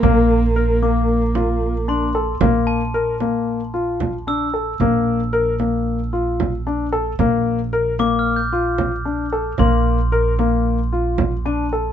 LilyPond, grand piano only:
\new Staff \with { instrumentName = "Grand piano" } { \time 9/8 \key bes \lydian \tempo 4. = 75 bes4 bes'8 bes4 f'4 d'8 a'8 | bes4 bes'8 bes4 f'4 d'8 a'8 | bes4 bes'8 bes4 f'4 d'8 a'8 | bes4 bes'8 bes4 f'4 d'8 a'8 |
bes4 bes'8 bes4 f'4 d'8 a'8 | }